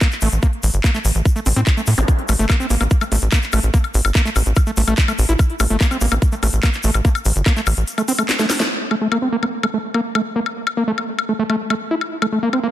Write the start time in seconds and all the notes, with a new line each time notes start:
0.01 A#3, kick, clap, closed hi-hat, shaker
0.12 clap, closed hi-hat, shaker
0.21 A1 A3, open hi-hat, shaker
0.32 A1, closed hi-hat, shaker
0.42 A#3, kick, closed hi-hat, shaker
0.53 closed hi-hat
0.63 A1, open hi-hat, shaker
0.73 G1, closed hi-hat, shaker
0.84 A#3, kick, clap, closed hi-hat, shaker
0.94 A3, clap, closed hi-hat, shaker
1.05 A1, open hi-hat, shaker
1.15 A1, closed hi-hat, shaker
1.25 kick, closed hi-hat, shaker
1.36 A3, closed hi-hat, shaker
1.46 A1 C4, open hi-hat, shaker
1.56 A2 C4, closed hi-hat, shaker
1.67 kick, clap, closed hi-hat, shaker
1.77 A3, closed hi-hat, shaker
1.87 A2 A3, open hi-hat, shaker
1.97 A1 C4, closed hi-hat, zap, shaker
2.08 kick, closed hi-hat, shaker
2.19 closed hi-hat
2.29 A1 A3, open hi-hat, high woodblock, shaker
2.39 G1 A3, closed hi-hat, shaker
2.49 A#3, kick, clap, closed hi-hat, high woodblock, shaker
2.60 C4, closed hi-hat, shaker
2.70 A1 A#3, open hi-hat, shaker
2.81 A1 A#3, closed hi-hat, high woodblock, shaker
2.91 kick, closed hi-hat, shaker
3.01 A3, closed hi-hat, high woodblock, shaker
3.12 A1 A3, open hi-hat, shaker
3.21 A1, closed hi-hat, shaker
3.32 A#3, kick, clap, closed hi-hat, high woodblock, shaker
3.42 clap, closed hi-hat, shaker
3.53 A1 A3, open hi-hat, high woodblock, shaker
3.63 A1, closed hi-hat, shaker
3.74 A#3, kick, closed hi-hat, shaker
3.84 closed hi-hat, high woodblock
3.94 A1, open hi-hat, shaker
4.05 G1, closed hi-hat, high woodblock, shaker
4.15 A#3, kick, clap, closed hi-hat, shaker
4.25 A3, clap, closed hi-hat, shaker
4.36 A1, open hi-hat, high woodblock, shaker
4.46 A1, closed hi-hat, shaker
4.56 kick, closed hi-hat, high woodblock, shaker
4.67 A3, closed hi-hat, shaker
4.77 A1 A3, open hi-hat, shaker
4.87 A1 A3, closed hi-hat, high woodblock, shaker
4.97 kick, clap, closed hi-hat, shaker
5.08 A3, closed hi-hat, high woodblock, shaker
5.19 A1, open hi-hat, shaker
5.29 A1 E4, closed hi-hat, shaker
5.39 kick, closed hi-hat, high woodblock, shaker
5.50 closed hi-hat
5.60 A1 A3, open hi-hat, high woodblock, shaker
5.70 G1 A3, closed hi-hat, shaker
5.81 A#3, kick, clap, closed hi-hat, shaker
5.91 C4, closed hi-hat, high woodblock, shaker
6.01 A1 A#3, open hi-hat, shaker
6.11 A1 A#3, closed hi-hat, high woodblock, shaker
6.22 kick, closed hi-hat, shaker
6.32 A3, closed hi-hat, shaker
6.43 A1 A3, open hi-hat, high woodblock, shaker
6.53 A1, closed hi-hat, shaker
6.63 A#3, kick, clap, closed hi-hat, high woodblock, shaker
6.73 clap, closed hi-hat, shaker
6.83 A1 A3, open hi-hat, shaker
6.94 A1, closed hi-hat, high woodblock, shaker
7.05 A#3, kick, closed hi-hat, shaker
7.15 closed hi-hat, high woodblock, shaker
7.25 A1, open hi-hat, shaker
7.36 G1, closed hi-hat, shaker
7.46 A#3, kick, clap, closed hi-hat, high woodblock, shaker
7.56 A3, clap, closed hi-hat, shaker
7.67 A1, open hi-hat, high woodblock, shaker
7.77 A1, closed hi-hat, shaker
7.87 closed hi-hat, shaker
7.98 A3, closed hi-hat, high woodblock, shaker
8.08 C4, open hi-hat, shaker
8.19 A3, closed hi-hat, high woodblock, shaker
8.29 snare, clap, closed hi-hat, shaker
8.39 A3, snare, closed hi-hat, shaker
8.50 snare, open hi-hat, high woodblock, shaker
8.60 A3, snare, closed hi-hat, shaker
8.91 A3, high woodblock
9.01 A3
9.12 A#3, high woodblock
9.22 C4
9.32 A#3
9.43 A#3, high woodblock
9.63 A3, high woodblock
9.74 A3
9.94 A#3, high woodblock
10.15 A3, high woodblock
10.36 A#3
10.46 high woodblock
10.67 high woodblock
10.77 A#3
10.88 A3
10.98 high woodblock
11.19 high woodblock
11.29 A3
11.39 A3
11.50 A3, high woodblock
11.70 A3, high woodblock
11.91 E4
12.01 high woodblock
12.22 A3, high woodblock
12.32 A3
12.43 A#3
12.53 C4, high woodblock
12.63 A#3